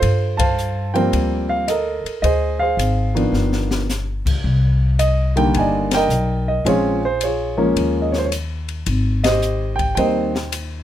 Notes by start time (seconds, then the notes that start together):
Already playing: F4 A4 C5
0.02 G2, kick, ride
0.37 C5 F5 A5, kick, ride
0.58 hi-hat pedal
0.94 F3 G3 A#3 C4 A#4 C5 G5, ride
1.13 D2, kick, ride
1.49 F5
1.68 A4 A#4 D#5, hi-hat pedal, ride
2.04 muted upright bass stroke, ride
2.22 D2 G#4 C5 D#5, kick, ride
2.59 G#4 C5 F5
2.77 G#1, hi-hat pedal, ride
3.15 D#3 F3 B3 D4, ride
3.32 G1, snare
3.52 snare
3.71 snare
3.89 snare, hi-hat pedal
4.25 C#2, kick, crash
4.44 C2, kick
4.99 D#5, hi-hat pedal, ride
5.36 D3 D#3 G3 A#3 G5, ride
5.54 G1 G#5, kick, ride
5.59 D5 D#5
5.91 G5, snare, ride
5.97 A#4 D#5
6.09 B1, hi-hat pedal
6.48 D#5
6.65 A#1 F3 G#3 C4 C#4 F4 G#4 C#5, kick, ride
7.05 C5
7.21 F4 G#4 C#5, hi-hat pedal, ride
7.57 F3 G#3 A#3 C#4
7.76 D#2, kick, ride
8.02 D#5
8.12 C#5, snare
8.18 C5
8.25 C#5
8.32 hi-hat pedal, ride
8.69 ride
8.86 G#1, kick, ride
9.24 G4 C5 D#5, snare, ride
9.42 hi-hat pedal
9.76 G5, kick, ride
9.95 D#2 D#3 G3 A#3 C4 C5 D#5 G5, kick, ride
10.35 snare
10.52 hi-hat pedal, ride